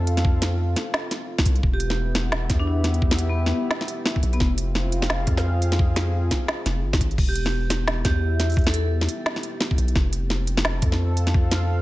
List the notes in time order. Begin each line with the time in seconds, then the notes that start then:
Already playing: F2 C4 F4 A4 F5
0.07 closed hi-hat
0.17 snare, closed hi-hat
0.25 kick
0.42 snare, closed hi-hat
0.76 snare, closed hi-hat
0.94 snare
1.11 snare, closed hi-hat
1.38 kick, snare
1.46 C2, kick, closed hi-hat
1.56 closed hi-hat
1.63 E1 B3, kick
1.74 G4
1.78 E5, closed hi-hat
1.84 E4 G4
1.90 snare
2.15 snare, closed hi-hat
2.32 snare
2.50 E2, kick, snare, closed hi-hat
2.60 D4
2.67 D4
2.84 snare, closed hi-hat
2.94 closed hi-hat
3.02 kick
3.11 snare
3.19 closed hi-hat
3.29 B3
3.46 snare
3.71 snare
3.81 snare
3.88 closed hi-hat
4.06 snare
4.16 kick
4.23 B1, closed hi-hat
4.33 B3, closed hi-hat
4.40 F1 C4, kick, snare
4.47 F4
4.55 F5, closed hi-hat
4.75 snare
4.84 G#4
4.92 closed hi-hat
5.02 snare
5.10 snare
5.27 F2, kick, closed hi-hat
5.37 snare
5.62 closed hi-hat
5.72 snare, closed hi-hat
5.79 kick
5.96 snare, closed hi-hat
6.31 kick, snare, closed hi-hat
6.48 snare
6.66 F1, snare, closed hi-hat
6.83 G#1
6.93 kick, snare
7.01 G#1, kick, closed hi-hat
7.11 closed hi-hat
7.18 E1 B3, kick, crash
7.29 G4
7.36 closed hi-hat
7.46 E4, snare
7.70 snare, closed hi-hat
7.83 G4 E5
7.88 snare
8.05 E2 G4, kick, snare, closed hi-hat
8.40 snare, closed hi-hat
8.50 closed hi-hat
8.52 closed hi-hat
8.54 kick, closed hi-hat
8.59 closed hi-hat
8.64 A4, snare, closed hi-hat
8.74 A4, closed hi-hat
9.01 snare
9.09 closed hi-hat
9.26 snare
9.36 snare
9.43 closed hi-hat
9.61 snare
9.71 kick
9.78 B1, closed hi-hat
9.88 closed hi-hat
9.95 F1 C4, kick, snare
10.13 closed hi-hat
10.21 F4
10.30 snare
10.47 A4, closed hi-hat
10.57 snare
10.65 snare
10.82 F2, kick, closed hi-hat
10.92 snare
10.99 F5
11.17 closed hi-hat
11.27 snare, closed hi-hat
11.34 kick
11.51 snare, closed hi-hat